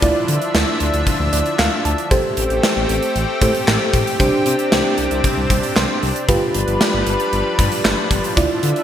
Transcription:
0.00 0.12 D2 loud
0.00 2.09 D3 medium
0.00 2.07 F3 medium
0.00 2.07 D4 medium
0.00 2.07 E4 medium
0.00 2.07 F4 medium
0.00 1.32 D5 medium
0.00 2.09 E5 medium
0.00 kick loud
0.00 closed hi-hat medium
0.28 0.38 D3 loud
0.28 closed hi-hat medium
0.42 closed hi-hat medium
0.55 0.64 D2 loud
0.55 snare loud
0.80 0.90 D2 loud
0.80 closed hi-hat medium
0.94 1.03 D2 loud
0.94 closed hi-hat medium
1.07 kick medium
1.07 closed hi-hat medium
1.20 1.29 D2 medium
1.33 1.42 D2 loud
1.33 1.57 D5 medium
1.33 closed hi-hat medium
1.46 closed hi-hat medium
1.59 1.68 D2 loud
1.59 1.83 F5 medium
1.59 snare loud
1.59 clap medium
1.85 1.94 D2 loud
1.85 2.09 A5 medium
1.85 closed hi-hat medium
1.98 closed hi-hat medium
2.11 2.21 A1 loud
2.11 4.18 A3 medium
2.11 4.18 C4 medium
2.11 3.39 G4 medium
2.11 6.25 G4 medium
2.11 3.39 A4 medium
2.11 3.39 C5 medium
2.11 kick loud
2.11 closed hi-hat medium
2.37 2.47 A1 loud
2.37 closed hi-hat medium
2.50 2.60 A1 loud
2.50 closed hi-hat medium
2.63 snare loud
2.76 2.86 A1 medium
2.89 2.99 A1 medium
2.89 closed hi-hat medium
3.03 closed hi-hat medium
3.15 3.25 A1 loud
3.15 closed hi-hat medium
3.42 3.51 A2 loud
3.42 4.19 G4 medium
3.42 4.20 A4 medium
3.42 4.19 C5 medium
3.42 kick loud
3.42 closed hi-hat medium
3.55 closed hi-hat medium
3.68 3.77 A1 loud
3.68 snare loud
3.68 clap medium
3.94 4.03 A1 loud
3.94 kick medium
3.94 closed hi-hat medium
4.07 closed hi-hat medium
4.20 4.29 C2 loud
4.20 6.26 C3 medium
4.20 6.27 C4 medium
4.20 6.24 D4 medium
4.20 8.83 D4 medium
4.20 6.25 G4 medium
4.20 6.25 C5 medium
4.20 kick loud
4.20 closed hi-hat medium
4.46 4.55 C3 loud
4.46 closed hi-hat medium
4.59 closed hi-hat medium
4.72 4.82 C2 loud
4.72 snare loud
4.98 5.08 C2 loud
4.98 closed hi-hat medium
5.11 5.21 C2 loud
5.11 closed hi-hat medium
5.24 kick medium
5.24 closed hi-hat medium
5.37 5.47 C2 medium
5.50 5.60 C2 loud
5.50 kick loud
5.50 closed hi-hat medium
5.63 closed hi-hat medium
5.76 5.86 C2 medium
5.76 6.25 C6 medium
5.76 snare loud
5.76 clap medium
6.02 6.12 C2 loud
6.02 open hi-hat medium
6.16 closed hi-hat medium
6.29 6.38 G1 loud
6.29 8.83 F3 medium
6.29 8.35 G3 medium
6.29 8.33 F4 medium
6.29 8.33 G4 medium
6.29 8.35 B4 medium
6.29 8.33 B4 medium
6.29 kick loud
6.29 closed hi-hat medium
6.54 6.64 G1 loud
6.54 closed hi-hat medium
6.68 6.77 G1 loud
6.68 closed hi-hat medium
6.81 snare loud
6.94 7.03 G1 loud
7.07 7.16 G1 loud
7.07 closed hi-hat medium
7.20 closed hi-hat medium
7.33 7.42 G1 loud
7.33 closed hi-hat medium
7.59 7.68 G2 loud
7.59 kick loud
7.59 closed hi-hat medium
7.72 closed hi-hat medium
7.85 7.94 G1 medium
7.85 snare loud
7.85 clap medium
8.11 8.20 G1 medium
8.11 kick medium
8.11 closed hi-hat medium
8.24 closed hi-hat medium
8.37 8.47 D2 loud
8.37 8.83 D3 medium
8.37 8.83 E4 medium
8.37 8.83 F4 medium
8.37 8.83 D5 medium
8.37 8.83 E5 medium
8.37 kick loud
8.37 closed hi-hat medium
8.63 8.73 D3 loud
8.63 closed hi-hat medium
8.76 closed hi-hat medium

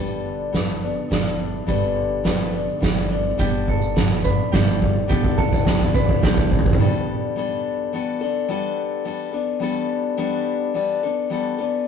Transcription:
0.00 0.96 G1 medium
0.00 1.67 G2 medium
0.00 0.52 G3 medium
0.00 0.53 B3 medium
0.00 0.54 D4 medium
0.00 1.11 G4 medium
0.00 0.55 A4 medium
0.25 1.94 D3 soft
0.52 0.82 G3 medium
0.52 0.82 B3 medium
0.52 2.24 B3 medium
0.52 0.82 D4 medium
0.52 0.80 A4 medium
0.52 kick soft
0.52 snare medium
0.52 closed hi-hat soft
0.81 1.09 B3 soft
0.81 1.39 D4 soft
0.81 1.11 D4 soft
0.81 1.11 A4 soft
1.10 1.61 G1 medium
1.10 1.66 G3 medium
1.10 1.67 B3 medium
1.10 1.68 D4 medium
1.10 1.65 E4 soft
1.10 1.68 A4 medium
1.10 kick medium
1.10 snare medium
1.10 closed hi-hat medium
1.39 2.54 D4 soft
1.66 2.67 G1 medium
1.66 3.35 G2 medium
1.66 2.23 G3 medium
1.66 2.24 B3 medium
1.66 2.25 D4 medium
1.66 2.82 G4 medium
1.66 2.26 A4 medium
1.66 kick medium
1.66 closed hi-hat medium
1.95 5.09 D3 medium
2.24 2.53 G3 medium
2.24 2.54 B3 medium
2.24 3.36 B3 medium
2.24 2.53 D4 medium
2.24 2.51 A4 medium
2.24 kick medium
2.24 snare medium
2.24 closed hi-hat medium
2.52 2.80 B3 soft
2.52 2.81 D4 soft
2.52 3.10 D4 medium
2.52 2.82 A4 soft
2.80 3.32 G1 medium
2.80 3.10 G3 medium
2.80 3.11 B3 medium
2.80 3.09 D4 medium
2.80 3.36 E4 medium
2.80 3.08 A4 medium
2.80 kick medium
2.80 snare medium
2.80 closed hi-hat medium
3.09 3.37 B3 soft
3.09 3.37 D4 soft
3.09 3.36 D4 medium
3.09 3.38 A4 medium
3.38 4.38 G1 medium
3.38 3.94 G3 medium
3.38 3.96 B3 medium
3.38 3.96 D4 medium
3.38 3.67 G4 medium
3.38 3.97 A4 medium
3.38 kick medium
3.38 closed hi-hat medium
3.38 tambourine medium
3.68 4.24 A4 medium
3.68 kick medium
3.81 tambourine medium
3.95 4.24 G3 medium
3.95 4.25 B3 medium
3.95 4.24 D4 medium
3.95 4.22 A4 medium
3.95 kick medium
3.95 snare medium
3.95 closed hi-hat medium
4.10 tambourine soft
4.23 4.52 B3 soft
4.23 4.53 D4 soft
4.23 4.52 A4 medium
4.23 4.52 B4 medium
4.23 kick medium
4.23 tambourine medium
4.52 5.02 G1 loud
4.52 4.81 G3 medium
4.52 4.81 B3 medium
4.52 4.80 D4 medium
4.52 5.08 G4 medium
4.52 4.78 A4 medium
4.52 kick medium
4.52 snare medium
4.52 closed hi-hat medium
4.67 tambourine medium
4.80 5.08 B3 soft
4.80 5.08 D4 medium
4.80 5.09 A4 medium
4.80 kick medium
5.08 6.08 G1 loud
5.08 5.63 G3 medium
5.08 5.64 B3 medium
5.08 5.65 D4 medium
5.08 5.37 G4 medium
5.08 5.66 A4 medium
5.08 kick loud
5.08 tambourine medium
5.24 kick loud
5.37 5.93 A4 medium
5.37 kick loud
5.53 kick loud
5.53 tambourine medium
5.65 5.94 G3 medium
5.65 5.95 B3 medium
5.65 5.94 D4 medium
5.65 5.93 A4 medium
5.65 kick loud
5.65 snare medium
5.81 kick loud
5.81 tambourine soft
5.94 6.22 B3 soft
5.94 6.23 D4 medium
5.94 6.23 A4 medium
5.94 6.22 B4 medium
5.94 kick loud
5.94 tambourine medium
6.09 kick loud
6.22 6.72 G1 loud
6.22 6.78 G3 medium
6.22 6.79 B3 medium
6.22 6.80 D4 medium
6.22 6.78 G4 medium
6.22 6.80 A4 medium
6.22 kick loud
6.22 snare medium
6.37 kick loud
6.37 tambourine medium
6.52 kick loud
6.52 tambourine soft
6.59 kick loud
6.66 kick loud
6.73 kick loud
6.79 7.35 G3 medium
6.79 7.36 B3 medium
6.79 7.38 D4 medium
6.79 7.38 A4 loud
7.36 7.92 G3 medium
7.36 7.92 B3 medium
7.36 7.94 D4 medium
7.36 7.95 A4 medium
7.93 8.21 G3 medium
7.93 8.21 B3 medium
7.93 8.21 D4 medium
7.93 8.20 A4 medium
8.21 8.48 B3 medium
8.21 8.49 D4 medium
8.21 8.49 A4 medium
8.48 9.04 G3 medium
8.48 9.04 B3 medium
8.48 9.06 D4 medium
8.48 9.07 A4 loud
9.05 9.33 G3 medium
9.05 9.33 B3 medium
9.05 9.32 D4 medium
9.05 9.31 A4 medium
9.32 9.60 B3 soft
9.32 9.61 D4 medium
9.32 9.61 A4 medium
9.60 10.16 G3 medium
9.60 10.17 B3 medium
9.60 10.19 D4 medium
9.60 10.19 A4 medium
10.17 10.73 G3 medium
10.17 10.74 B3 loud
10.17 10.75 D4 loud
10.17 10.76 A4 loud
10.74 11.03 G3 medium
10.74 11.03 B3 medium
10.74 11.03 D4 medium
10.74 11.02 A4 medium
11.03 11.30 B3 soft
11.03 11.31 D4 medium
11.03 11.31 A4 medium
11.30 11.59 G3 medium
11.30 11.59 B3 medium
11.30 11.59 D4 medium
11.30 11.57 A4 medium
11.58 11.87 B3 medium
11.58 11.87 D4 medium
11.58 11.87 A4 medium

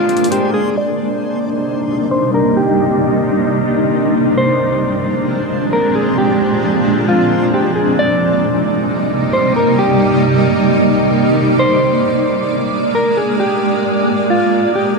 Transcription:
0.00 0.73 G#3 medium
0.00 0.82 G#3 medium
0.00 0.73 A#3 medium
0.00 0.73 D4 medium
0.00 0.29 F4 medium
0.00 0.31 C5 medium
0.00 0.73 C5 medium
0.08 3.08 C4 medium
0.08 closed hi-hat soft
0.17 closed hi-hat medium
0.24 closed hi-hat medium
0.31 0.53 G4 medium
0.31 2.29 C5 medium
0.31 closed hi-hat medium
0.54 0.75 G#4 medium
0.77 4.34 C3 medium
0.77 4.34 G3 medium
0.77 4.34 A#3 medium
0.77 4.34 D4 medium
0.77 4.34 D#4 medium
0.77 2.08 D5 loud
2.11 2.33 C5 medium
2.34 2.56 A#4 medium
2.57 4.33 G4 loud
4.37 7.95 A#2 medium
4.37 7.95 F3 medium
4.37 7.95 G#3 medium
4.37 7.95 C4 medium
4.37 7.95 D4 medium
4.37 7.95 A#4 medium
4.37 7.95 C5 medium
4.37 5.69 C5 loud
5.73 5.94 A#4 medium
5.95 6.17 G#4 medium
6.18 7.04 G4 loud
7.08 7.51 F4 medium
7.54 7.75 G4 medium
7.76 7.97 G#4 medium
7.99 11.56 C3 medium
7.99 11.56 G3 medium
7.99 11.56 A#3 medium
7.99 11.56 D#4 medium
7.99 14.99 D5 medium
7.99 9.30 D5 loud
9.33 9.55 C5 medium
9.56 9.78 A#4 medium
9.79 11.55 G4 loud
11.59 14.99 G#3 medium
11.59 14.99 A#3 medium
11.59 12.91 C5 loud
12.95 13.16 A#4 medium
13.17 13.39 G#4 medium
13.40 14.26 G4 loud
14.30 14.73 F4 medium
14.75 14.97 G4 medium

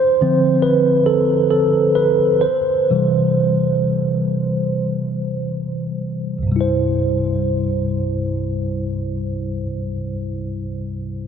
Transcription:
0.00 0.60 C5 medium
0.21 1.48 D3 soft
0.21 1.49 F3 soft
0.21 1.49 C4 soft
0.62 1.08 B4 medium
1.06 1.49 A4 medium
1.51 1.71 A4 medium
1.95 2.16 B4 medium
2.41 5.34 C5 medium
2.90 3.53 C3 soft
2.90 3.54 E3 soft
2.90 3.54 G3 soft
6.38 9.51 C2 soft
6.43 9.55 G2 soft
6.47 9.59 C3 soft
6.52 9.64 G3 soft
6.56 9.68 E4 soft
6.61 9.73 C5 soft

